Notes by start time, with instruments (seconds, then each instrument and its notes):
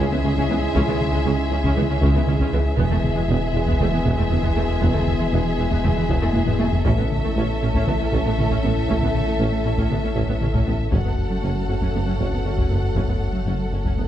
Already playing: sub bass C#2, trombone section G#2 G#3, french horn section C#4 E4, violin section G#4 E5, impact
0.11 analog synth bass C#2, cello section C#3, viola section B3, synth arpeggio sound C#4
0.23 tuba C#2, analog synth bass C#2, double bass section C#2, cello section C#3, synth arpeggio sound C#4, viola section C#4, taiko mid
0.36 analog synth bass C#2, synth arpeggio sound C#3, cello section C#3, viola section C#4, taiko
0.49 double bass section C#2, analog synth bass C#2, tuba C#2, cello section C#3, synth arpeggio sound E3, viola section B3
0.62 analog synth bass C#2
0.74 analog synth bass C#2, double bass section C#2, tuba C#2, synth arpeggio sound C#3, cello section C#3, viola section C#4, taiko
0.87 analog synth bass C#2, cello section C#3, synth arpeggio sound E3, viola section B3, taiko mid
1.00 analog synth bass C#2, taiko mid
1.13 analog synth bass C#3, cello section C#3, synth arpeggio sound G#3, viola section G#3
1.25 analog synth bass C#2, double bass section C#2, tuba C#2, synth arpeggio sound C#3, cello section C#3, viola section C#4
1.37 analog synth bass C#3
1.51 analog synth bass C#2, tuba C#2, double bass section C#2, cello section C#3, synth arpeggio sound C#4, viola section C#4
1.63 analog synth bass C#2, cello section C#3, synth arpeggio sound C#3, viola section C#4, taiko
1.76 analog synth bass C#2, double bass section C#2, tuba C#2, cello section C#3, synth arpeggio sound E3, viola section B3, taiko mid
1.88 analog synth bass C#3, cello section C#3, synth arpeggio sound G#3, viola section C#4
2.01 analog synth bass C#2, tuba C#2, double bass section C#2, synth arpeggio sound C#3, cello section C#3, viola section C#4, taiko
2.14 analog synth bass C#2, cello section C#3, viola section B3, synth arpeggio sound C#4
2.26 analog synth bass C#2, tuba C#2, double bass section C#2, cello section C#3, synth arpeggio sound C#4, viola section C#4, taiko mid
2.39 analog synth bass C#2, synth arpeggio sound C#3, cello section C#3, viola section C#4, taiko
2.52 double bass section C#2, analog synth bass C#2, tuba C#2, cello section C#3, synth arpeggio sound E3, viola section B3
2.65 analog synth bass C#2
2.77 tuba E1, double bass section E1, sub bass E1, analog synth bass E2, cello section E2, trombone section B2 G#3, synth arpeggio sound E3, french horn section B3 E4, viola section B3, violin section G#4 E5, taiko
2.89 analog synth bass E2, cello section E2, synth arpeggio sound G#3, viola section A3, taiko mid
3.03 analog synth bass E2, taiko mid
3.16 cello section E2, analog synth bass E3, viola section G#3, synth arpeggio sound B3
3.28 tuba E1, double bass section E1, analog synth bass E2, cello section E2, synth arpeggio sound E3, viola section B3
3.40 analog synth bass E3
3.53 tuba E1, double bass section E1, analog synth bass E2, cello section E2, viola section B3, synth arpeggio sound E4
3.66 analog synth bass E2, cello section E2, synth arpeggio sound E3, viola section B3, taiko
3.79 tuba E1, double bass section E1, analog synth bass E2, cello section E2, synth arpeggio sound G#3, viola section A3, taiko mid
3.92 cello section E2, analog synth bass E3, synth arpeggio sound B3, viola section B3
4.05 double bass section E1, tuba E1, analog synth bass E2, cello section E2, synth arpeggio sound E3, viola section B3, taiko
4.17 analog synth bass E2, cello section E2, viola section A3, synth arpeggio sound E4
4.30 double bass section E1, tuba E1, analog synth bass E2, cello section E2, viola section B3, synth arpeggio sound E4, taiko mid
4.43 cello section E2, analog synth bass E2, synth arpeggio sound E3, viola section B3, taiko
4.56 tuba E1, double bass section E1, analog synth bass E2, cello section E2, synth arpeggio sound G#3, viola section A3
4.69 analog synth bass E2
4.81 tuba E1, double bass section E1, cello section E2, analog synth bass E2, synth arpeggio sound E3, viola section B3, taiko
4.93 cello section E2, analog synth bass E2, synth arpeggio sound G#3, viola section A3, taiko mid
5.07 analog synth bass E2, taiko mid
5.19 cello section E2, analog synth bass E3, viola section G#3, synth arpeggio sound B3
5.32 tuba E1, double bass section E1, analog synth bass E2, cello section E2, synth arpeggio sound E3, viola section B3
5.45 analog synth bass E3
5.57 tuba E1, double bass section E1, cello section E2, analog synth bass E2, viola section B3, synth arpeggio sound E4
5.70 cello section E2, analog synth bass E2, synth arpeggio sound E3, viola section B3, taiko
5.83 tuba E1, double bass section E1, cello section E2, analog synth bass E2, synth arpeggio sound G#3, viola section A3, taiko mid
5.96 cello section E2, analog synth bass E3, viola section B3, synth arpeggio sound B3
6.09 tuba E1, double bass section E1, cello section E2, analog synth bass E2, synth arpeggio sound E3, viola section B3, taiko
6.21 cello section E2, analog synth bass E2, viola section A3, synth arpeggio sound E4
6.33 tuba E1, double bass section E1, cello section E2, analog synth bass E2, viola section B3, synth arpeggio sound E4, taiko high
6.47 analog synth bass E2, cello section E2, synth arpeggio sound E3, viola section B3, taiko low-mid
6.59 tuba E1, double bass section E1, cello section E2, analog synth bass E2, synth arpeggio sound G#3, viola section A3, taiko high
6.72 analog synth bass E2, taiko low
6.85 tuba A1, double bass section A1, sub bass A1, cello section A2, analog synth bass A2, trombone section A3, synth arpeggio sound A3, french horn section C#4 E4, viola section C#4, violin section A4 E5, taiko
6.98 cello section A2, analog synth bass A2, viola section B3, synth arpeggio sound C#4, taiko mid
7.11 analog synth bass A2, taiko mid
7.23 cello section A2, viola section A3, analog synth bass A3, synth arpeggio sound E4
7.36 tuba A1, double bass section A1, cello section A2, analog synth bass A2, synth arpeggio sound A3, viola section C#4
7.50 analog synth bass A3
7.62 tuba A1, double bass section A1, cello section A2, analog synth bass A2, viola section C#4, synth arpeggio sound A4
7.74 analog synth bass A2, cello section A2, synth arpeggio sound A3, viola section C#4, taiko
7.87 double bass section A1, tuba A1, trombone section A2, cello section A2, analog synth bass A2, viola section B3, synth arpeggio sound C#4, taiko mid
7.99 cello section A2, analog synth bass A3, viola section C#4, synth arpeggio sound E4
8.12 double bass section A1, tuba A1, analog synth bass A2, cello section A2, synth arpeggio sound A3, viola section C#4, taiko
8.25 analog synth bass A2, cello section A2, viola section B3, synth arpeggio sound A4
8.38 tuba A1, double bass section A1, cello section A2, analog synth bass A2, viola section C#4, synth arpeggio sound A4, taiko mid
8.51 cello section A2, analog synth bass A2, synth arpeggio sound A3, viola section C#4, taiko
8.63 tuba A1, double bass section A1, cello section A2, analog synth bass A2, viola section B3, synth arpeggio sound C#4
8.77 analog synth bass A2
8.88 double bass section A1, tuba A1, cello section A2, analog synth bass A2, synth arpeggio sound A3, viola section C#4, taiko
9.02 cello section A2, analog synth bass A2, viola section B3, synth arpeggio sound C#4, taiko mid
9.14 analog synth bass A2, taiko mid
9.27 cello section A2, viola section A3, analog synth bass A3, synth arpeggio sound E4
9.40 tuba A1, double bass section A1, cello section A2, analog synth bass A2, synth arpeggio sound A3, viola section C#4
9.52 analog synth bass A3
9.65 double bass section A1, tuba A1, analog synth bass A2, cello section A2, viola section C#4, synth arpeggio sound A4
9.77 analog synth bass A2, cello section A2, synth arpeggio sound A3, viola section C#4, taiko
9.90 tuba A1, double bass section A1, analog synth bass A2, cello section A2, viola section B3, synth arpeggio sound C#4, taiko mid
10.04 cello section A2, analog synth bass A3, viola section C#4, synth arpeggio sound E4
10.15 tuba A1, double bass section A1, analog synth bass A2, cello section A2, synth arpeggio sound A3, viola section C#4, taiko
10.29 analog synth bass A2, cello section A2, viola section B3, synth arpeggio sound A4
10.41 tuba A1, double bass section A1, analog synth bass A2, cello section A2, viola section C#4, synth arpeggio sound A4, taiko mid
10.54 cello section A2, analog synth bass A2, synth arpeggio sound A3, viola section C#4, taiko
10.67 tuba A1, double bass section A1, cello section A2, analog synth bass A2, viola section B3, synth arpeggio sound C#4
10.80 analog synth bass A2
10.92 tuba F#1, sub bass F#1, double bass section F#1, cello section F#2, analog synth bass F#2, trombone section F#2 A3, synth arpeggio sound F#3, viola section C#4, french horn section C#4 F#4, violin section A4 F#5, taiko
11.04 cello section F#2, analog synth bass F#2, synth arpeggio sound A3, viola section B3
11.17 analog synth bass F#2
11.30 cello section F#2, analog synth bass F#3, viola section A3, synth arpeggio sound C#4
11.43 tuba F#1, double bass section F#1, analog synth bass F#2, cello section F#2, synth arpeggio sound F#3, viola section C#4
11.56 analog synth bass F#3
11.68 tuba F#1, double bass section F#1, analog synth bass F#2, cello section F#2, viola section C#4, synth arpeggio sound F#4
11.80 analog synth bass F#2, cello section F#2, synth arpeggio sound F#3, viola section C#4, taiko
11.93 tuba F#1, double bass section F#1, analog synth bass F#2, cello section F#2, synth arpeggio sound A3, viola section B3
12.06 cello section F#2, analog synth bass F#3, synth arpeggio sound C#4, viola section C#4
12.18 tuba F#1, double bass section F#1, analog synth bass F#2, cello section F#2, synth arpeggio sound F#3, viola section C#4, taiko
12.32 cello section F#2, analog synth bass F#2, viola section B3, synth arpeggio sound F#4
12.44 tuba F#1, double bass section F#1, cello section F#2, analog synth bass F#2, viola section C#4, synth arpeggio sound F#4
12.57 analog synth bass F#2, cello section F#2, synth arpeggio sound F#3, viola section C#4, taiko
12.70 tuba F#1, double bass section F#1, cello section F#2, analog synth bass F#2, synth arpeggio sound A3, viola section B3
12.83 analog synth bass F#2
12.95 double bass section F#1, tuba F#1, analog synth bass F#2, cello section F#2, synth arpeggio sound F#3, viola section C#4, taiko
13.08 cello section F#2, analog synth bass F#2, synth arpeggio sound A3, viola section B3
13.20 analog synth bass F#2
13.33 cello section F#2, analog synth bass F#3, viola section A3, synth arpeggio sound C#4
13.46 double bass section F#1, tuba F#1, analog synth bass F#2, cello section F#2, synth arpeggio sound F#3, viola section C#4
13.59 analog synth bass F#3
13.72 double bass section F#1, tuba F#1, cello section F#2, analog synth bass F#2, viola section C#4, synth arpeggio sound F#4
13.84 analog synth bass F#2, cello section F#2, synth arpeggio sound F#3, viola section C#4, taiko
13.97 double bass section F#1, tuba F#1, analog synth bass F#2, cello section F#2, synth arpeggio sound A3, viola section B3